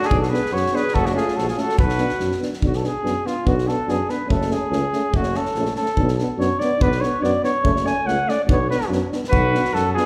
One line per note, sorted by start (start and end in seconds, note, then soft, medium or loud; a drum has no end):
0.02 0.18 G#4 loud
0.02 0.08 A4 medium
0.02 snare soft
0.07 0.33 B1 medium
0.07 0.20 D4 medium
0.07 0.11 F#4 medium
0.11 kick medium
0.18 0.32 F#4 medium
0.18 0.31 A4 medium
0.23 snare soft
0.30 0.40 B3 medium
0.30 0.40 D4 medium
0.30 0.54 G#4 medium
0.30 0.55 B4 medium
0.34 snare soft
0.46 snare soft
0.52 0.63 F#2 medium
0.52 0.76 F#4 medium
0.52 0.77 C#5 loud
0.56 snare soft
0.66 snare soft
0.72 0.80 B3 medium
0.72 0.82 D4 medium
0.72 0.96 G#4 medium
0.72 0.96 B4 loud
0.76 snare soft
0.88 snare soft
0.93 1.16 F#1 medium
0.93 1.09 F#4 medium
0.93 1.07 A4 medium
0.93 kick medium
1.06 1.15 D4 medium
1.06 1.14 F#4 medium
1.06 snare soft
1.14 1.23 A3 medium
1.14 1.22 C#4 medium
1.14 1.39 F4 medium
1.14 1.37 G#4 medium
1.14 snare soft
1.28 snare soft
1.36 1.48 A#1 medium
1.36 1.47 F#4 medium
1.36 1.46 A4 medium
1.36 snare soft
1.48 1.62 F4 medium
1.48 1.60 G#4 medium
1.48 snare soft
1.57 1.65 A3 medium
1.57 1.65 C#4 medium
1.57 1.79 F#4 medium
1.57 1.79 A4 medium
1.57 snare soft
1.69 snare soft
1.79 2.02 B1 medium
1.79 2.38 B4 medium
1.79 kick medium
1.83 2.39 F#4 medium
1.89 snare soft
1.98 2.07 B3 medium
1.98 2.08 D4 medium
1.98 snare soft
2.09 snare soft
2.20 2.32 F#2 medium
2.20 snare soft
2.32 snare soft
2.40 2.49 B3 medium
2.40 2.50 D4 soft
2.40 snare soft
2.53 snare soft
2.62 2.85 B1 medium
2.62 2.71 B3 medium
2.62 2.70 D4 medium
2.62 2.77 F#4 medium
2.62 kick medium
2.73 2.87 A4 medium
2.73 snare soft
2.82 2.92 B3 soft
2.82 2.91 D4 soft
2.82 3.28 G#4 medium
2.82 snare soft
3.03 3.15 F#2 medium
3.03 3.13 B3 medium
3.03 3.11 D4 medium
3.03 snare soft
3.25 3.33 B3 medium
3.25 3.33 D4 soft
3.25 3.49 F4 medium
3.25 snare soft
3.46 3.69 B1 medium
3.46 3.54 B3 medium
3.46 3.54 D4 medium
3.46 3.69 F#4 medium
3.46 kick medium
3.58 snare soft
3.67 3.77 B3 medium
3.67 3.75 D4 medium
3.67 3.91 A4 medium
3.67 snare soft
3.87 3.99 F#2 medium
3.87 3.97 B3 medium
3.87 3.96 D4 medium
3.87 4.12 G#4 medium
3.87 snare soft
4.08 4.16 B3 medium
4.08 4.19 D4 medium
4.08 4.30 B4 medium
4.08 snare soft
4.28 4.52 F#1 medium
4.28 4.37 A3 medium
4.28 4.37 C#4 medium
4.28 4.54 A4 medium
4.28 kick medium
4.42 snare soft
4.49 4.58 A3 medium
4.49 4.59 C#4 medium
4.49 5.18 G#4 medium
4.49 snare soft
4.70 4.82 C#2 medium
4.70 4.81 A3 medium
4.70 4.80 C#4 medium
4.70 snare soft
4.93 5.02 A3 medium
4.93 5.03 C#4 medium
4.93 snare soft
5.12 5.36 F#1 medium
5.12 5.23 A3 medium
5.12 5.23 C#4 medium
5.12 kick medium
5.16 5.38 F#4 medium
5.23 snare soft
5.35 5.43 A3 soft
5.35 5.44 C#4 medium
5.35 5.76 A4 medium
5.35 snare soft
5.46 snare soft
5.55 5.67 A#1 medium
5.55 5.66 C#4 medium
5.55 snare soft
5.59 5.67 A3 medium
5.66 snare soft
5.76 5.85 C#4 soft
5.76 6.15 A4 medium
5.76 snare soft
5.80 5.88 A3 soft
5.86 snare soft
5.96 6.20 B1 medium
5.96 6.07 D4 medium
5.96 kick medium
6.02 6.09 B3 medium
6.08 snare soft
6.19 6.29 B3 medium
6.19 6.28 D4 medium
6.19 snare soft
6.37 6.49 F#2 medium
6.37 6.49 B3 medium
6.37 6.47 D4 medium
6.37 6.61 C#5 medium
6.37 snare soft
6.59 6.68 D4 medium
6.59 6.83 D5 medium
6.59 snare soft
6.63 6.71 B3 medium
6.79 7.03 B1 medium
6.79 6.90 B3 medium
6.79 6.88 D4 medium
6.79 7.03 B4 loud
6.79 kick medium
6.92 snare soft
7.00 7.12 B3 medium
7.00 7.09 D4 medium
7.00 7.24 C#5 medium
7.00 snare soft
7.21 7.34 F#2 medium
7.21 7.32 B3 medium
7.21 7.29 D4 medium
7.21 7.44 D5 medium
7.21 snare soft
7.43 7.51 B3 medium
7.43 7.52 D4 medium
7.43 7.88 C#5 medium
7.43 snare soft
7.63 7.87 F#1 medium
7.63 7.73 A3 medium
7.63 7.72 C#4 medium
7.63 kick medium
7.76 snare soft
7.85 7.93 A3 medium
7.85 7.94 C#4 medium
7.85 8.08 G#5 medium
7.85 snare soft
8.06 8.18 C#2 medium
8.06 8.16 A3 medium
8.06 8.17 C#4 medium
8.06 8.30 F#5 loud
8.06 snare soft
8.28 8.36 A3 medium
8.28 8.37 C#4 medium
8.28 8.44 D5 loud
8.28 snare soft
8.44 8.70 B1 medium
8.44 8.53 D5 medium
8.48 8.58 B3 medium
8.48 8.57 D4 medium
8.48 8.69 C#5 loud
8.48 kick loud
8.69 8.79 B3 medium
8.69 8.78 D4 medium
8.69 8.89 B4 medium
8.69 snare soft
8.81 snare soft
8.89 9.01 F#2 medium
8.89 9.00 B3 medium
8.89 8.98 D4 medium
8.89 snare soft
9.12 9.21 B3 medium
9.12 9.20 D4 medium
9.12 snare soft
9.24 snare soft
9.30 9.55 B1 loud
9.30 9.73 F#4 medium
9.30 9.76 B4 loud
9.30 kick medium
9.53 9.64 B3 medium
9.53 9.61 D4 medium
9.53 snare soft
9.65 snare soft
9.73 9.97 F#2 medium
9.73 9.95 F#4 medium
9.73 9.93 A4 loud
9.73 snare soft
9.93 10.06 F4 medium
9.93 10.06 G#4 loud
9.97 10.06 B3 medium
9.97 10.06 D4 medium
9.97 snare soft